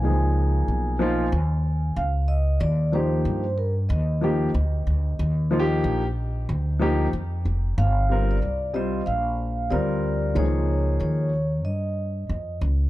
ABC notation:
X:1
M:4/4
L:1/16
Q:"Swing 16ths" 1/4=93
K:Eb
V:1 name="Vibraphone"
a12 f2 e2 | d2 c4 B2 e8- | e12 z4 | f3 d3 e2 f4 d4 |
_d4 d4 e6 z2 |]
V:2 name="Grand piano"
[_F,=F,B,EA]6 [F,B,EF]2 z8 | z2 [F,B,EG]2 z6 [F,B,EG]2 z4 | z2 [F,B,EFG]2 z6 [F,B,EG]2 z4 | z2 [G,CFB]2 z2 [G,CFc]2 z4 [G,CFB]4 |
[E,F,B,EA]6 z8 z2 |]
V:3 name="Upright bass" clef=bass
_D,,4 _C,,4 E,,4 D,,4 | E,,4 G,,4 E,,4 D,,2 D,,2 | E,,4 B,,,4 D,,4 F,,2 F,,,2 | G,,,4 C,,4 B,,,4 D,,4 |
_D,,4 E,,4 G,,4 F,,2 D,,2 |]